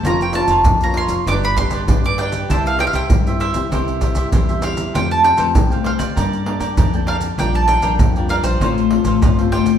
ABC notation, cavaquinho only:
X:1
M:4/4
L:1/16
Q:1/4=98
K:F
V:1 name="Cavaquinho"
[FB_df]2 [FBdf] [FBdf] z [Bdf] [FBdf] [Bdf] [=DG=B=d]2 [DGBd] [DGBd] [DGBd] [GBd] [DGBd]2 | [EGce]2 [EGce] [EGce] z [Gce] [EGce] [Gce] [EGce]2 [EGce] [EGce] [EGce] [Gce] [EGce]2 | [Acfg]2 [Acfg] [Acfg] z [cfg] [Acfg] [cfg] [Bdga]2 [Bdga] [Bdga] [Bdga] [dga] [Bdga]2 | [DBdg]2 [DBdg] [DBdg] z [Bdg] [DBdg] [Bdg] [FAcf]2 [FAcf] [FAcf] [FAcf] [Acf] [FAcf]2 |]